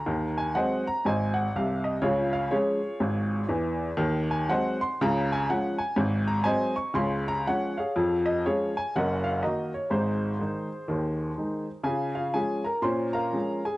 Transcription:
X:1
M:4/4
L:1/8
Q:"Swing" 1/4=122
K:Db
V:1 name="Upright piano"
b a [ceg] b [cea] g f e | [FAd] f [FAd]4 z2 | z a [ceg] c' b a g a | z b [cea] d' c' b [dg] [Adf]- |
[Adf] e [FAd] a [Beg] f [GBe] d | [EAc]6- [EAc] z | [Aa] [Ff] [Aa] [Bb] [cc'] [Bfb]2 [Aa] |]
V:2 name="Upright piano" clef=bass
[E,,E,]2 [G,A,C]2 [A,,,A,,]2 [C,,C,]2 | [D,,D,]2 [F,A,D]2 [A,,,A,,]2 [_F,,_F,]2 | [E,,E,]2 [G,A,C]2 [D,,D,]2 [F,A,D]2 | [A,,,A,,]2 [G,A,C]2 [D,,D,]2 [F,A,D]2 |
[F,,F,]2 [F,A,D]2 [G,,,G,,]2 [E,B,E]2 | [A,,,A,,]2 [E,A,E]2 [E,,E,]2 [E,A,E]2 | [D,F]2 [F,A,D]2 [B,,D]2 [F,A,D]2 |]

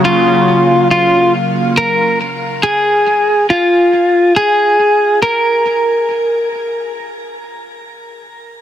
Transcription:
X:1
M:4/4
L:1/8
Q:1/4=139
K:Gblyd
V:1 name="Clean electric guitar"
F4 F2 z2 | B2 z2 A4 | F4 A4 | B6 z2 |
z8 |]
V:2 name="Analog synth pad" clef=bass
[D,G,B,f]8 | z8 | z8 | z8 |
z8 |]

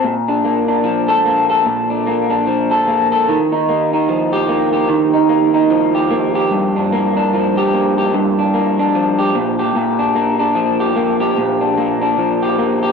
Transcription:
X:1
M:4/4
L:1/16
Q:"Swing 16ths" 1/4=74
K:Bb
V:1 name="Clean electric guitar"
B,, D B, D F, A B, A B,, D B, D F, A B, A | E, E B, E F, G B, G E, E B, E F, G B, G | G,, D B, D F, G B, G G,, D B, D F, G B,, G | B,, D B, D F, G B, G B,, D B, D F, G B, G |]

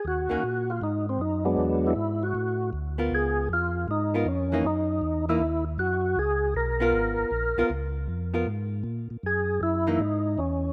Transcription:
X:1
M:4/4
L:1/8
Q:"Swing" 1/4=157
K:Dbmix
V:1 name="Tonewheel organ"
G3 F E =C E z | z =E2 G3 z2 | A2 F2 E2 D2 | E3 _F2 z G2 |
A2 B6 | z8 | A2 _F2 E2 D2 |]
V:2 name="Tonewheel organ"
z6 z [G,A,C=D]- | [G,A,C=D]2 z6 | z8 | z8 |
z8 | z8 | z8 |]
V:3 name="Hollow-body jazz guitar"
z [E,B,DG] z6 | z6 z [CFB]- | [CFB]2 z3 [CFB] z [_F,B,E] | z3 [_F,B,E] z4 |
z3 [CFB]3 z [CFB] | z3 [CFB] z4 | z3 [_F,B,E] z4 |]
V:4 name="Tonewheel organ" clef=bass
E,, E,, B,,2 A,,2 G,,2 | =E,,2 ^G,,2 =A,,2 =D,,2 | D,,2 F,,2 A,,2 F,,2 | G,,2 _F,,2 E,,2 G,,2 |
D,,2 C,,2 A,,, A,,, B,,, B,,, | D,,2 F,,2 A,,2 B,, B,, | G,,2 G,,2 A,,2 _F,,2 |]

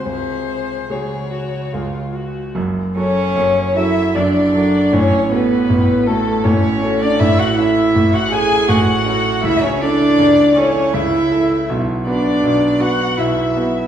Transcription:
X:1
M:3/4
L:1/16
Q:1/4=80
K:F#m
V:1 name="Violin"
^B4 c6 z2 | z2 c4 e2 d4 | c2 B4 A2 c3 d | e f e3 f g2 f4 |
e c d4 c2 e4 | z2 d4 f2 e4 |]
V:2 name="Violin"
G4 G2 F2 ^E2 F2 | z2 c4 e2 d4 | c2 B4 A2 c3 d | e f e3 f g2 f4 |
e c d4 c2 e4 | z2 d4 f2 e4 |]
V:3 name="Cello"
^B,,4 C,6 z2 | z2 C4 E2 D4 | C2 B,4 A,2 C3 D | E F E3 F G2 F4 |
E C D4 C2 E4 | z2 D4 F2 E4 |]
V:4 name="Grand piano"
C,,4 [G,FG]4 [C,,G,^EG]4 | [F,,,F,,]2 [F,FA]2 [F,,,F,,]2 [F,FA]2 [F,,,F,,]2 [F,FA]2 | [A,,,A,,]2 [CFA]2 [A,,,A,,]2 [CFA]2 [A,,,A,,]2 [CFA]2 | [A,,,A,,]2 [CEA]2 [A,,,A,,]2 [CEA]2 [A,,,A,,]2 [CEA]2 |
[C,,C,]2 [EA]2 [C,,C,]2 [EA]2 [C,,C,]2 [EA]2 | [B,,,B,,]2 [B,FB]2 [B,,,B,,]2 [B,FB]2 [B,,,B,,]2 [B,FB]2 |]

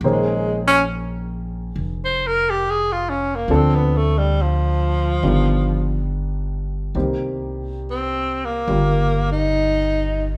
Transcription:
X:1
M:4/4
L:1/16
Q:"Swing" 1/4=69
K:Bbdor
V:1 name="Tenor saxophone"
A,2 D2 z4 z c B G A F D B, | C _C =A, G, F,8 z4 | z4 C2 B,4 E6 |]
V:2 name="Grand piano"
[E,B,DAc]16 | [F,=A,C=D=A]8 [E,G,=B,DF]8 | [E,G,B,CG]8 [G,B,F]8 |]
V:3 name="Upright bass" clef=bass
B,,,8 F,,,8 | =D,,8 G,,,8 | C,,8 G,,,8 |]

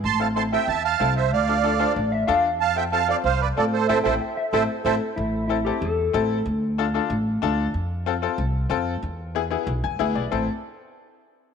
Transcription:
X:1
M:4/4
L:1/16
Q:1/4=187
K:Am
V:1 name="Accordion"
[ac']2 [fa]2 [ac']2 [eg]2 [ea]2 [fa]4 [ce]2 | [df]8 z8 | [fa]2 [eg]2 [fa]2 [df]2 [cf]2 [Bd]2 [Ad]2 [Ac]2 | [Ace]2 [Ace]2 z4 [Ace]2 z2 [Ace]2 z2 |
z16 | z16 | z16 | z16 |
z16 |]
V:2 name="Clean electric guitar"
z16 | z4 A2 c2 d2 e2 f3 z | z16 | z2 g2 e2 e2 c4 A4 |
E4 E2 G2 A8 | z16 | z16 | z16 |
c2 z12 z2 |]
V:3 name="Upright piano"
z2 [CEA]2 [CEA]2 [CEA]2 z4 [CEA]2 z2 | z2 [DFA]2 [DFA]2 [DFA]2 z4 [DFA]2 z2 | z2 [CFA]2 [CFA]2 [CFA]2 z4 [CFA]2 z2 | [CEA]2 [CEA]2 z4 [CEA]2 z2 [CEA]2 z2 |
z4 [CEA]2 [CEA]2 z4 [CEA]2 z2 | z4 [DFA]2 [DFA]2 z4 [DFA]2 z2 | z4 [CFA]2 [CFA]2 z4 [CFA]2 z2 | z4 [B,E^G]2 [B,EG]2 z2 ^g2 [B,EGe]2 d2 |
[CEA]2 z12 z2 |]
V:4 name="Upright bass" clef=bass
A,,,8 E,,4 C,,4 | D,,8 A,,,4 E,,4 | F,,8 C,,4 A,,4 | A,,,2 A,,,2 z4 A,,,2 z2 A,,,2 z2 |
A,,,8 E,,4 A,,,4 | D,,8 A,,,4 D,,4 | F,,8 C,,4 F,,4 | E,,8 B,,,2 E,,2 D,,2 B,,,2 |
A,,,2 z12 z2 |]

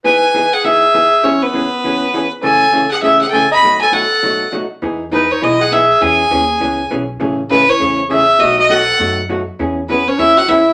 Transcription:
X:1
M:4/4
L:1/16
Q:"Swing" 1/4=201
K:E
V:1 name="Fiddle"
g6 f2 e8 | c2 B12 z2 | g6 f2 e2 f3/2 =g/2 ^g2 b2- | b2 g2 f8 z4 |
z4 B2 c2 d2 f2 e4 | g12 z4 | z4 B2 c4 z2 e4 | d2 d2 f6 z6 |
z4 B2 c2 e2 f2 e4 |]
V:2 name="Clarinet"
B6 G2 G8 | C2 B,12 z2 | A6 G2 G2 G3/2 A/2 A2 d2- | d2 A2 A8 z4 |
z4 D2 D2 E2 G2 G4 | G12 z4 | z4 C2 E4 z2 G4 | F2 F2 A6 z6 |
z4 B,2 C2 E2 F2 E4 |]
V:3 name="Hollow-body jazz guitar"
[E,B,DG]2 z2 [E,B,DG]2 z2 [E,B,DG]2 z2 [E,B,DG]2 z2 | [E,B,CG]2 z2 [E,B,CG]2 z2 [E,B,CG]2 z2 [E,B,CG]2 z2 | [A,,C,E,A,CG]2 z2 [A,,C,E,A,CG]2 z2 [A,,C,E,A,CG]2 z2 [A,,C,E,A,CG]2 z2 | [B,,F,A,DF]2 z2 [B,,F,A,DF]2 z2 [B,,F,A,DF]2 z2 [B,,F,A,DF]2 z2 |
[E,B,DG]2 z2 [E,B,DG]2 z2 [E,B,DG]2 z2 [E,B,DG]2 z2 | [E,B,CG]2 z2 [E,B,CG]2 z2 [E,B,CG]2 z2 [E,B,CG]2 z2 | [C,E,A,CG]2 z2 [C,E,A,CG]2 z2 [C,E,A,CG]2 z2 [C,E,A,CG]2 z2 | [B,,F,A,DF]2 z2 [B,,F,A,DF]2 z2 [B,,F,A,DF]2 z2 [B,,F,A,DF]2 z2 |
[E,B,CG]2 z2 [E,B,CG]2 z2 [E,B,CG]2 z2 [E,B,CG]2 z2 |]
V:4 name="Upright bass" clef=bass
z16 | z16 | z16 | z16 |
E,,8 B,,,8 | E,,4 D,,4 C,,4 B,,,4 | A,,,8 E,,8 | B,,,8 F,,8 |
E,,8 D,,4 E,,4 |]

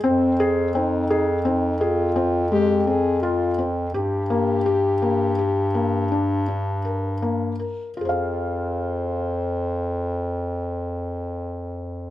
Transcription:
X:1
M:11/8
L:1/8
Q:1/4=82
K:Fm
V:1 name="French horn"
C2 E2 E F2 G A F z | G8- G z2 | c8- c3 |]
V:2 name="Felt piano"
C A C A C A C A, C F C | G B, G B, G B, =D D B B, B | [FAcf]8- [FAcf]3 |]
V:3 name="Bass clarinet" clef=bass
F,,8- F,,3 | G,,8- G,,3 | F,,8- F,,3 |]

